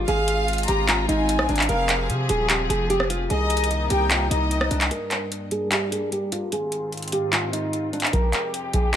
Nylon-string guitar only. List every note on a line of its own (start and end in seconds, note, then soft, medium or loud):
0.08 0.46 G#4 loud
0.68 0.86 G4 medium
0.88 1.06 F4 medium
1.09 1.46 D#4 medium
1.49 1.67 D4 medium
1.69 2.07 A#4 medium
2.29 2.47 G#4 medium
2.49 2.67 G4 medium
2.70 2.88 G#4 medium
2.90 3.08 G4 medium
3.10 3.28 F4 medium
3.30 3.68 G#4 loud
3.90 4.08 G4 medium
4.11 4.29 F4 medium
4.31 4.69 D#4 medium
4.71 4.89 D4 medium
4.91 5.29 A#4 medium
5.52 5.69 G#4 medium
5.72 5.90 G4 medium
5.92 6.10 G#4 medium
6.12 6.30 G4 medium
6.32 6.50 F4 medium
6.52 6.90 G#4 medium
7.13 7.31 G4 medium
7.33 7.51 F4 medium
7.53 7.91 D#4 medium
7.93 8.11 D4 medium
8.13 8.51 A#4 medium
8.74 8.92 G#4 medium